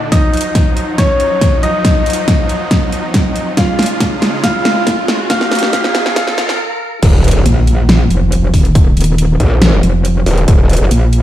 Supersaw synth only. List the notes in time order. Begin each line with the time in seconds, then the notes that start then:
Already playing: A#2 D3 D4
0.12 F3 F#3 D#4
3.57 C#3 G#3 F4
5.30 B2 F#3 D#4